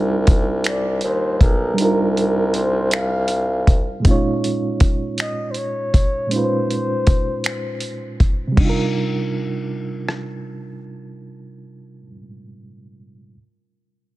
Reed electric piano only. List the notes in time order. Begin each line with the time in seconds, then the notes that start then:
Already playing: G3 D4 D#4 F4 A#4
1.74 G3 D4
1.79 D#4 F4
1.85 A#4
4.00 A#2 G#3
4.04 C4 D#4
4.09 C#4 F4 C#5
6.27 A#2 G#3
6.31 C#4 D#4
6.35 F4 B4
6.44 C5
8.47 C3
8.52 G3
8.56 D4
8.61 D#4
8.65 F4
8.69 A#4